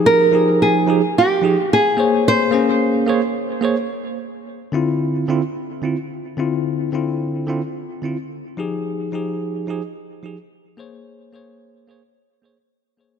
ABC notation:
X:1
M:4/4
L:1/8
Q:"Swing 16ths" 1/4=109
K:F
V:1 name="Nylon-string guitar"
B2 _A2 G2 A2 | c6 z2 | z8 | z8 |
z8 | z8 |]
V:2 name="Tine electric piano"
[F,_EG^G] [F,E=G_A]2 [F,EGA] z [F,EGA] z [B,Ac^c]- | [B,_Ac^c] [B,_DA=c]2 [B,Ac_d] z [B,Acd] z2 | z [D,CEF]2 [D,CEF] z [D,CEF] z [D,CEF]- | [D,CEF] [D,CEF]2 [D,CEF] z [D,CEF] z [F,_EG^G]- |
[F,_EG^G] [F,E=G_A]2 [F,EGA] z [F,EGA] z [B,Ac^c]- | [B,_Ac^c] [B,A=c_d]2 [B,Acd] z [B,Acd] z [B,Acd] |]